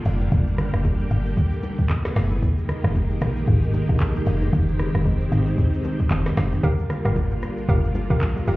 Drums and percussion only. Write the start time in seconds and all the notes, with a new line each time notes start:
0.05 open hi-hat, shaker
0.21 low bongo, shaker
0.32 kick, low conga, shaker
0.47 shaker
0.58 cross-stick, low conga, shaker
0.73 cross-stick, shaker
0.84 kick, high bongo, shaker
0.99 shaker
1.11 shaker
1.26 shaker
1.37 kick, low conga, shaker
1.53 shaker
1.63 low bongo, shaker
1.79 kick, shaker
1.90 kick, clap, high bongo, shaker
2.05 cross-stick, snare, high bongo, shaker
2.16 cross-stick, snare, open hi-hat, shaker
2.31 low bongo, shaker
2.42 kick, low conga, shaker
2.58 shaker
2.69 cross-stick, low conga, shaker
2.84 cross-stick, shaker
2.95 kick, high bongo, shaker
3.10 shaker
3.21 cross-stick, shaker
3.36 shaker
3.48 kick, low conga, shaker
3.63 shaker
3.74 low bongo, shaker
3.89 kick, shaker
4.00 kick, clap, high bongo, shaker
4.15 high bongo, shaker
4.26 open hi-hat, shaker
4.42 low bongo, shaker
4.53 kick, low conga, shaker
4.68 shaker
4.79 cross-stick, low conga, shaker
4.95 cross-stick, shaker
5.05 kick, high bongo, shaker
5.21 shaker
5.32 shaker
5.47 high bongo, shaker
5.58 kick, low conga, shaker
5.74 shaker
5.84 low bongo, shaker
6.00 kick, shaker
6.11 kick, clap, high bongo, shaker
6.26 cross-stick, snare, high bongo, shaker
6.37 cross-stick, snare, open hi-hat, shaker
6.52 low bongo, shaker
6.63 kick, low conga, shaker
6.79 shaker
6.90 cross-stick, low conga, shaker
7.05 cross-stick, shaker
7.16 kick, high bongo, shaker
7.31 shaker
7.42 cross-stick, shaker
7.57 shaker
7.69 kick, low conga, shaker
7.84 shaker
7.95 low bongo, shaker
8.10 kick, shaker
8.21 kick, clap, high bongo, shaker
8.36 high bongo, shaker
8.48 open hi-hat, shaker